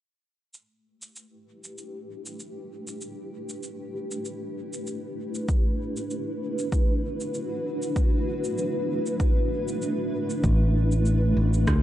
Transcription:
0.54 ambient pad A3, cabasa
0.73 ambient pad G4
0.84 ambient pad E4 B4
1.02 cabasa
1.08 ambient pad D4
1.16 cabasa
1.64 cabasa
1.78 cabasa
2.26 cabasa
2.40 cabasa
2.87 cabasa
3.01 cabasa
3.49 cabasa
3.63 cabasa
4.11 cabasa
4.25 cabasa
4.73 cabasa
4.87 cabasa
5.35 cabasa
5.49 kick, cabasa
5.97 cabasa
6.11 cabasa
6.50 ambient pad F#4
6.59 cabasa
6.72 kick, cabasa
7.21 cabasa
7.34 cabasa
7.82 cabasa
7.96 kick, cabasa
8.44 cabasa
8.58 cabasa
9.06 cabasa
9.20 kick, cabasa
9.68 cabasa
9.82 cabasa
10.30 cabasa
10.44 fingered electric bass A1, kick, cabasa
10.92 ambient pad G4, cabasa
11.06 cabasa
11.37 fingered electric bass A1
11.54 cabasa
11.67 fingered electric bass D2, kick, cross-stick, cabasa

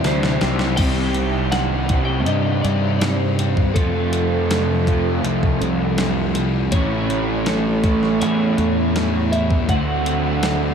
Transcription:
Already playing: overdriven electric guitar C3 G3 C4 E4 G4, string machine G4 C5 E5 A5
0.04 picked electric bass D2, distorted electric guitar C3 G3 C4, overdriven electric guitar C3 E3 G3 E4 G4, clean electric guitar C5, snare, open hi-hat
0.23 overdriven electric guitar G3 E4 G4, distorted electric guitar G3 C4, snare
0.41 picked electric bass C2, distorted electric guitar C3 G3 C4, overdriven electric guitar C3 G3 C4 E4 G4, snare, open hi-hat
0.59 overdriven electric guitar G3 E4 G4, distorted electric guitar G3 C4, snare
0.77 picked electric bass C2, distorted electric guitar C3 G3 C4, overdriven electric guitar C3 D#3 G3 C4, clean electric guitar G5, kick, closed hi-hat, crash
0.81 overdriven electric guitar G4
1.15 distorted electric guitar G3 C4, closed hi-hat
1.52 distorted electric guitar C3 G3 C4, clean electric guitar F#5, snare, closed hi-hat
1.89 overdriven electric guitar C3 D#3 G3 C4 G4, distorted electric guitar G3 C4, kick, closed hi-hat
2.05 clean electric guitar G5
2.26 picked electric bass G2, distorted electric guitar C3 G3 C4, clean electric guitar D#5, closed hi-hat
2.62 picked electric bass G2, distorted electric guitar C4, clean electric guitar D5, closed hi-hat
2.67 distorted electric guitar G3
2.99 distorted electric guitar C3, clean electric guitar C5, snare, closed hi-hat
3.03 distorted electric guitar G3 C4
3.39 distorted electric guitar G3 C4, closed hi-hat
3.57 kick
3.74 overdriven electric guitar F2 C3 F3 A3 C4 F4, distorted electric guitar F2 C3 F3, picked electric bass F2, clean electric guitar A4, kick, closed hi-hat
4.12 distorted electric guitar C3 F3, closed hi-hat
4.49 distorted electric guitar F2 C3 F3, snare, closed hi-hat
4.87 distorted electric guitar C3 F3, overdriven electric guitar F3 A3 C4 F4, kick, closed hi-hat
5.23 picked electric bass C2, distorted electric guitar F2 C3 F3, closed hi-hat
5.43 kick
5.60 picked electric bass C2, distorted electric guitar C3 F3, closed hi-hat
5.98 distorted electric guitar F2 C3 F3, snare, closed hi-hat
6.35 distorted electric guitar C3 F3, closed hi-hat
6.72 picked electric bass A1, overdriven electric guitar A2 E3 A3 C#4 E4, distorted electric guitar A2 E3 A3, clean electric guitar C#5, kick, closed hi-hat
7.10 distorted electric guitar E3 A3, closed hi-hat
7.46 distorted electric guitar A2 E3, clean electric guitar A4, snare, closed hi-hat
7.50 distorted electric guitar A3
7.84 overdriven electric guitar A2 E3 A3 C#4 E4, distorted electric guitar E3 A3, kick, closed hi-hat
8.03 snare
8.20 picked electric bass E2, distorted electric guitar A2 E3 A3, clean electric guitar C#5, closed hi-hat
8.57 picked electric bass E2, distorted electric guitar E3 A3, closed hi-hat
8.94 distorted electric guitar A2 E3 A3, snare, closed hi-hat
9.31 distorted electric guitar E3 A3, clean electric guitar E5, closed hi-hat
9.50 kick
9.68 picked electric bass D2, overdriven electric guitar D3 A3 C4 F#4, distorted electric guitar D3 A3 D4, clean electric guitar F#5, kick, closed hi-hat
10.04 distorted electric guitar A3 D4, closed hi-hat
10.42 distorted electric guitar D3 A3 D4, snare, closed hi-hat

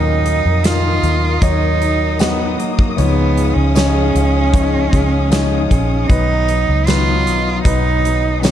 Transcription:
Already playing: fingered electric bass D#2, grand piano A#2 F#3 D#4 A#4, steel-string acoustic guitar D#3 F#3 D#4 F#4 A#4, cello D#4, string section A#4 D#5 D#6
0.25 steel-string acoustic guitar D#4 F#4 A#4, closed hi-hat
0.45 fingered electric bass F2
0.64 steel-string acoustic guitar D#3 D#4 A#4, grand piano D#3 D#4 F4, cello F4, snare, closed hi-hat, tambourine
1.03 fingered electric bass D#2, closed hi-hat
1.41 fingered electric bass D#2, grand piano F#3 D#4 C#5, steel-string acoustic guitar F#3 D#4 F#4 A#4, cello D#4, kick, closed hi-hat
1.82 steel-string acoustic guitar D#4 F#4 A#4, closed hi-hat
2.19 steel-string acoustic guitar D#3 F#3 D#4 F#4 A#4, grand piano F#3 D#4 F#4, cello B3, snare, closed hi-hat, tambourine
2.58 cello A#3, steel-string acoustic guitar F#4 A#4, closed hi-hat
2.62 steel-string acoustic guitar D#4
2.79 kick
2.97 fingered electric bass C#2, grand piano G#2 F3 D#4 C#5, steel-string acoustic guitar C#3 G#3 D#4 F4 G#4, cello B3, string section C#5 F5 G#5, closed hi-hat
3.37 steel-string acoustic guitar D#4 F4 G#4, closed hi-hat
3.54 fingered electric bass C#2, cello C#4
3.75 steel-string acoustic guitar C#3 G#3 D#4 F4 G#4, grand piano F3 D#4 C#5, snare, closed hi-hat, tambourine
4.15 fingered electric bass C#2, closed hi-hat
4.53 grand piano F3 D#4 C#5, steel-string acoustic guitar G#3 D#4 F4 G#4, kick, closed hi-hat
4.92 fingered electric bass C#2, steel-string acoustic guitar D#4 F4 G#4, kick, closed hi-hat
5.30 steel-string acoustic guitar C#3 G#3 D#4 F4 G#4, grand piano F3 D#4 C#5, snare, closed hi-hat, tambourine
5.68 fingered electric bass A#1, cello C#4, steel-string acoustic guitar F4 G#4, kick, closed hi-hat
5.73 steel-string acoustic guitar D#4
6.07 fingered electric bass B1, steel-string acoustic guitar B2 D#3 F#3 B3, grand piano F#3 D#4 B4, cello D#4, string section D#5, kick, closed hi-hat
6.11 steel-string acoustic guitar D#4 B4
6.48 steel-string acoustic guitar F#3 B3 D#4 B4, closed hi-hat
6.68 fingered electric bass C#2
6.86 steel-string acoustic guitar B2 D#3 F#3 B3 D#4 B4, grand piano F#3 D#4 B4, cello F4, snare, closed hi-hat, tambourine
7.27 fingered electric bass B1, closed hi-hat
7.64 fingered electric bass B1, steel-string acoustic guitar F#3 B3 D#4 B4, grand piano F#3 D#4 B4, cello D#4, kick, closed hi-hat
8.03 steel-string acoustic guitar F#3 B3 D#4 B4, closed hi-hat
8.41 steel-string acoustic guitar B2 D#3 F#3 B3 D#4 B4, grand piano F#3 D#4 C#5, cello B3, snare, closed hi-hat, tambourine

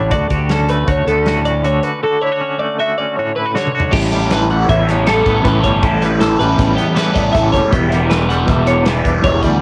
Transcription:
Already playing: fingered electric bass A1, clean electric guitar A2 G3 D4 E4 C#5
0.10 fingered electric bass D2, clean electric guitar D3 F#4 D5, kick, closed hi-hat
0.30 fingered electric bass D2, clean electric guitar F#4 G4, kick, closed hi-hat
0.49 clean electric guitar C#4 A4, snare, closed hi-hat
0.69 clean electric guitar A3 B4, closed hi-hat
0.88 fingered electric bass D2, clean electric guitar F#4 C#5, kick, closed hi-hat
1.07 fingered electric bass D2, clean electric guitar B3 A4, closed hi-hat
1.18 clean electric guitar C#4
1.26 clean electric guitar A2 F#4, snare, closed hi-hat
1.45 clean electric guitar F#4 D5, closed hi-hat
1.64 clean electric guitar D3 F#4 C#5, closed hi-hat
1.83 clean electric guitar F#4 B4, closed hi-hat
2.03 clean electric guitar D3 F#4 A4
2.21 clean electric guitar E4 C#5
2.32 clean electric guitar F#4
2.41 clean electric guitar C#4
2.58 clean electric guitar A3 D5
2.79 clean electric guitar F#4 E5
2.98 clean electric guitar C#4 D5
3.16 clean electric guitar A2 F#4 C#5
3.36 clean electric guitar E4 B4
3.46 clean electric guitar F#4
3.54 clean electric guitar D3 F#4 C#5, snare
3.67 mid tom
3.75 clean electric guitar F#4
3.80 floor tom
3.92 fingered electric bass A1, overdriven electric guitar A2 E3 G3 C#4 E4 A4, clean electric guitar A2 G4, kick, crash
4.12 clean electric guitar G3, overdriven electric guitar G3 C#4 E4 A4, closed hi-hat
4.30 overdriven electric guitar A2 E3 G3 C#4, clean electric guitar E3 B4, snare, closed hi-hat
4.34 overdriven electric guitar E4 A4
4.49 clean electric guitar G3 F#5, overdriven electric guitar G3 C#4 E4 A4, snare, closed hi-hat
4.68 fingered electric bass A1, clean electric guitar E2 E5, kick, closed hi-hat
4.87 clean electric guitar B3 C#5, snare, closed hi-hat
5.07 clean electric guitar E3 A4, overdriven electric guitar G3 C#4 E4 A4, snare, closed hi-hat
5.26 fingered electric bass A1, overdriven electric guitar G3 C#4 E4 A4, clean electric guitar B3, kick, closed hi-hat
5.44 fingered electric bass A1, clean electric guitar A2 B4, overdriven electric guitar A2 E3 G3 C#4 E4 A4, kick, snare, closed hi-hat
5.63 fingered electric bass G1, clean electric guitar G3 C#5, overdriven electric guitar G3 C#4 E4 A4, kick, closed hi-hat
5.82 fingered electric bass A1, overdriven electric guitar A2 E3 G3 C#4 E4 A4, clean electric guitar A2 A4, kick, closed hi-hat
6.01 clean electric guitar G3 B4, overdriven electric guitar G3 C#4 E4 A4, snare, closed hi-hat
6.20 overdriven electric guitar A2 E3 G3 C#4 E4 A4, clean electric guitar E3 A4, snare, closed hi-hat
6.39 fingered electric bass A1, clean electric guitar G3 B4, overdriven electric guitar G3 C#4 E4 A4, closed hi-hat
6.57 fingered electric bass A1, clean electric guitar E2, kick, snare, closed hi-hat
6.76 clean electric guitar B3 G4, closed hi-hat
6.95 clean electric guitar E3 B4, overdriven electric guitar G3 C#4 E4, snare, closed hi-hat
6.99 overdriven electric guitar A4
7.14 fingered electric bass A1, overdriven electric guitar G3 C#4 E4 A4, clean electric guitar B3 D5, kick, snare, closed hi-hat
7.33 fingered electric bass A1, overdriven electric guitar A2 E3 G3 C#4 E4 A4, clean electric guitar A2 E5, kick, snare, closed hi-hat
7.52 fingered electric bass F#1, clean electric guitar G3 C#5, overdriven electric guitar G3 C#4 E4 A4, kick, snare, closed hi-hat
7.71 fingered electric bass E1, clean electric guitar E2 G4, overdriven electric guitar E3 G3 B3 E4, kick, closed hi-hat
7.90 overdriven electric guitar G3 B3 E4, clean electric guitar G3, snare, closed hi-hat
8.09 overdriven electric guitar E3 G3 B3 E4, clean electric guitar E3 B4, snare, closed hi-hat
8.29 clean electric guitar G3 F#5, overdriven electric guitar G3 B3 E4, snare, closed hi-hat
8.46 fingered electric bass E1, clean electric guitar B2 E5, kick, snare, closed hi-hat
8.67 clean electric guitar D4 C#5, closed hi-hat
8.84 clean electric guitar E3 B4, overdriven electric guitar E3 G3 B3, snare, closed hi-hat
8.88 overdriven electric guitar E4
9.04 fingered electric bass E1, overdriven electric guitar G3 B3 E4, clean electric guitar D4, kick, closed hi-hat
9.23 fingered electric bass E1, clean electric guitar E2 C#5, overdriven electric guitar E3 G3 B3 E4, kick, closed hi-hat
9.42 fingered electric bass D2, clean electric guitar G3 D5, overdriven electric guitar G3 B3 E4, kick, snare, closed hi-hat

